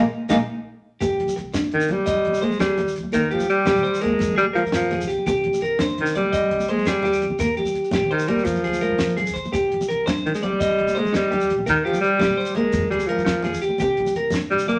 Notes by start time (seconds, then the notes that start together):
0.29 A#1 G#3 A#3 D#4 A#4 D#5 F5, kick, snare, muted conga, shekere
1.01 C2 C4 G4, kick, closed hi-hat, muted conga, low conga, shekere
1.20 C2, closed hi-hat
1.27 high conga, low conga, shekere
1.36 C2, muted clean electric guitar stroke, closed hi-hat, low conga, shekere
1.54 D4, muted clean electric guitar stroke, snare, closed hi-hat, muted conga, low conga, shekere
1.63 high conga, shekere
1.72 C3 D#3, closed hi-hat
1.81 low conga, shekere
1.88 G3 C4, closed hi-hat, low conga, shekere
1.97 high conga, low conga
2.06 D#5, kick, closed hi-hat, muted conga, shekere
2.14 low conga
2.25 C2, closed hi-hat
2.32 high conga, shekere
2.42 G#3 A#3 C5, closed hi-hat
2.50 low conga, shekere
2.59 G3 G#4, snare, closed hi-hat, muted conga, low conga, shekere
2.68 high conga
2.78 D#2 C4, closed hi-hat, low conga, shekere
2.86 low conga, shekere
2.96 D2, closed hi-hat, shekere
3.03 high conga, low conga
3.12 D#2 D#3 A#3 A#4, kick, closed hi-hat, muted conga, low conga, shekere
3.31 D#2 F3 G4, closed hi-hat
3.39 high conga, low conga, shekere
3.48 G3, closed hi-hat, low conga, shekere
3.66 A#1 C4 G4, snare, closed hi-hat, muted conga, low conga, shekere
3.74 D#3, high conga, shekere
3.83 C5, closed hi-hat
3.94 low conga, shekere
4.01 D#2 G#3 A#3 A#4, closed hi-hat, low conga, shekere
4.10 high conga, low conga
4.19 F2, kick, closed hi-hat, muted conga, shekere
4.29 D3, low conga
4.36 D2 G3 G#4, closed hi-hat
4.47 high conga
4.53 F3 G#3 A#4, closed hi-hat
4.64 F3, low conga, shekere
4.72 F3, snare, closed hi-hat, muted conga, low conga, shekere
4.82 high conga
4.91 F2 C4 G#4, closed hi-hat, low conga, shekere
5.01 C#2, low conga, shekere
5.08 G4, closed hi-hat, shekere
5.18 high conga, low conga
5.26 C2 C4 G4, kick, closed hi-hat, muted conga, low conga, shekere
5.44 C2, closed hi-hat
5.54 high conga, low conga, shekere
5.61 C2 A#4, closed hi-hat, low conga, shekere
5.79 D4 C5, snare, closed hi-hat, muted conga, low conga, shekere
5.89 high conga, shekere
5.98 C3 D#3, closed hi-hat
6.06 low conga, shekere
6.15 G3 C4 D5, closed hi-hat, low conga, shekere
6.25 high conga, low conga
6.32 D#5, kick, closed hi-hat, muted conga, shekere
6.42 low conga
6.51 C2, closed hi-hat
6.59 high conga, shekere
6.68 G#3 A#3 C5, closed hi-hat
6.76 low conga, shekere
6.85 G3 G#4, snare, closed hi-hat, muted conga, low conga, shekere
7.03 D#2 C4 G4, snare, closed hi-hat, low conga, shekere
7.13 low conga, shekere
7.21 C2, closed hi-hat, shekere
7.30 high conga, low conga
7.39 D#2 A#3 A#4, kick, closed hi-hat, muted conga, low conga, shekere
7.57 D#2 G4, closed hi-hat
7.65 high conga, low conga, shekere
7.74 closed hi-hat, shekere
7.83 low conga, shekere
7.91 A#1 C4 G4, snare, closed hi-hat, muted conga, low conga, shekere
8.01 D#3, high conga
8.11 D#3 C5, closed hi-hat
8.19 low conga, shekere
8.28 D#2 G3 A#3 A#4, closed hi-hat, low conga, shekere
8.37 high conga, shekere
8.45 F2 F3, kick, closed hi-hat, muted conga, shekere
8.54 D3, low conga, shekere
8.64 D2 G#4, closed hi-hat, shekere
8.71 high conga, shekere
8.80 G#3 A#4, closed hi-hat, low conga, shekere
8.89 F3, low conga
8.98 F3, snare, closed hi-hat, muted conga, low conga, shekere
9.08 high conga, shekere
9.17 F2 C4 G#4, closed hi-hat, low conga, shekere
9.27 D2, low conga, shekere
9.34 C5, kick, closed hi-hat, low conga, shekere
9.45 high conga, low conga, shekere
9.52 C2 C4 G4, kick, closed hi-hat, muted conga, low conga, shekere
9.72 C2, closed hi-hat
9.81 high conga, low conga, shekere
9.89 C2 A#4, closed hi-hat, low conga, shekere
10.06 D4 C5, snare, closed hi-hat, muted conga, low conga, shekere
10.17 high conga, shekere
10.26 C3 D#3, closed hi-hat
10.35 G#3, low conga, shekere
10.42 G3 C4 D5, closed hi-hat, low conga
10.52 high conga, low conga
10.60 D#5, kick, closed hi-hat, muted conga, shekere
10.70 low conga
10.79 C2, closed hi-hat
10.88 high conga, shekere
10.95 G#3 A#3 C5, closed hi-hat
11.05 low conga, shekere
11.13 G3 D#4, snare, closed hi-hat, muted conga, low conga, shekere
11.31 D#2 C4 G4, closed hi-hat, low conga, shekere
11.41 low conga, shekere
11.50 A#1, closed hi-hat, shekere
11.59 high conga, low conga
11.66 D#2 D#3 A#4, muted nylon-string guitar stroke, kick, closed hi-hat, muted conga, low conga, shekere
11.85 D#2 F3 G4, closed hi-hat
11.94 high conga, low conga, shekere
12.01 G3, closed hi-hat, low conga, shekere
12.19 A#1 C4 G4, snare, closed hi-hat, muted conga, low conga, shekere
12.28 D#3, high conga, shekere
12.37 C5, closed hi-hat
12.45 low conga, shekere
12.55 D#2 G#3 A#3 A#4, closed hi-hat, low conga, shekere
12.64 high conga, low conga
12.73 F2, kick, closed hi-hat, muted conga, shekere
12.81 D3, low conga
12.90 D2 G3 G#4, closed hi-hat
12.98 high conga, shekere
13.07 F3 G#3 A#4, closed hi-hat
13.16 F3, low conga, shekere
13.25 F3, snare, closed hi-hat, muted conga, low conga, shekere
13.33 high conga
13.42 F2 C4 G#4, snare, closed hi-hat, low conga, shekere
13.52 D2, low conga, shekere
13.62 G4, closed hi-hat, shekere
13.69 high conga, low conga
13.78 C2 C4 G4, kick, closed hi-hat, muted conga, low conga, shekere
13.97 C2, closed hi-hat
14.05 high conga, low conga, shekere
14.14 C2 A#4, closed hi-hat, low conga, shekere
14.30 D4, muted clean electric guitar stroke, snare, closed hi-hat, muted conga, low conga, shekere
14.40 high conga, shekere
14.51 C3 G3, closed hi-hat
14.57 low conga, shekere
14.67 A#3 C4 D5, closed hi-hat, low conga, shekere
14.75 high conga, low conga